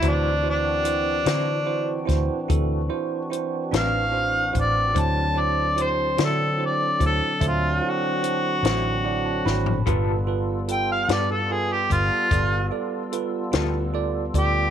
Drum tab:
HH |x---x-x---x-x---x-x---x-|x---x-x---x-x---x-x-----|x---x-x---x-x---x-x---x-|
SD |------o---o-------o-----|------o-----------o---o-|------o-----------o-----|
FT |------------------------|-----------------------o|------------------------|
BD |o---------o-o---------o-|o---------o-o-----------|o---------o-o---------o-|